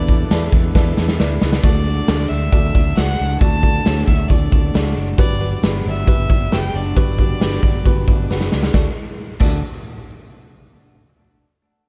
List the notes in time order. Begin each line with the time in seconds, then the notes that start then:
Already playing: E2 D4 E4 A4 B4 D5 E5
0.08 B3, kick, closed hi-hat
0.31 E2 E4 A4 B4 D5, snare, closed hi-hat
0.52 E2 B3, kick, closed hi-hat
0.75 E2 E4 A4 B4 D5, kick, snare
0.97 E2 B3, snare
1.08 snare
1.19 D2 D4 E4 A4 B4 D5, snare
1.41 C#2 B3, snare
1.53 snare
1.63 D2 A3 F#4 A4 D5, kick, closed hi-hat
1.86 D4 F#4 A4 D5, closed hi-hat
2.08 D2 A3 F#4 A4 D5, snare, closed hi-hat
2.29 D2 D4 E5, closed hi-hat
2.52 D2 A3 F#4 A4 D5, kick, closed hi-hat
2.75 D2 D4, kick, closed hi-hat
2.96 C#2 F#4 A4 D5 F#5, snare, closed hi-hat
3.19 C#2 D4, closed hi-hat
3.40 D2 A3 F#4 A4 D5 A5, kick, closed hi-hat
3.62 D4 F#4 A4 D5, kick, closed hi-hat
3.85 D2 A3 F#4 A4 C#5, snare, closed hi-hat
4.06 D2 D4 E5, kick, closed hi-hat
4.29 D2 A3 F#4 A4 D5, kick, closed hi-hat
4.52 D2 D4, kick, closed hi-hat
4.74 C#2 F#4 A4 D5, snare, closed hi-hat
4.96 F#1 D4, closed hi-hat
5.18 G1 F#3 F#4 G4 B4 D5, kick, closed hi-hat
5.39 D4 F#4 G4 B4, closed hi-hat
5.63 G1 B3 F#4 G4 B4, snare, closed hi-hat
5.85 G1 D4 E5, closed hi-hat
6.07 G1 B3 F#4 G4 B4, kick, closed hi-hat
6.29 G1 D4, kick, closed hi-hat
6.51 F#1 F#4 G4 B4 G5, snare, closed hi-hat
6.73 F#1 D4 D5, closed hi-hat
6.96 G1 F#3 F#4 G4 B4, kick, closed hi-hat
7.19 D4 F#4 G4 B4, kick, closed hi-hat
7.40 G1 B3 F#4 G4 B4, snare, closed hi-hat
7.63 G1 D4, kick, closed hi-hat
7.85 G1 B3 F#4 G4 B4, kick, closed hi-hat
8.08 G1 D4, kick, closed hi-hat
8.30 F#1 F#4 G4 B4, snare
8.41 snare
8.52 C#2 D4, snare
8.63 snare
8.74 D2 A3 D4 F#4 A4 D5, kick, snare
9.40 D2 A3 D4 F#4 A4 D5, kick, crash